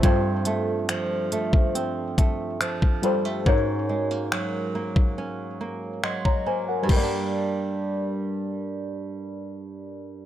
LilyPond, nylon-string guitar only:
\new Staff \with { instrumentName = "Nylon-string guitar" } { \time 4/4 \key g \phrygian \tempo 4 = 70 <g, c'>8 a8 f8 a8 c'8 a8 f8 g16 a16 | <aes, des'>8 aes16 bes16 ges8 bes8 des'8 bes8 ges8 bes8 | <g, g bes d'>1 | }